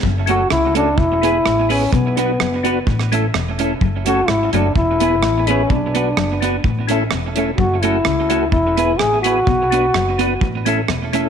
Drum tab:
HH |--x---x---x---o-|p-x---x---x---x-|--x---x---x---x-|--x---x---x---x-|
SD |----r-------r---|----r----r--r---|----r-------r---|----r-------r---|
BD |o-------o-------|o-------o-------|o-------o-------|o-------o-------|

HH |--x---x---x---x-|--x---x---x---x-|
SD |----r-------r---|----r-------r---|
BD |o-------o-------|o-------o-------|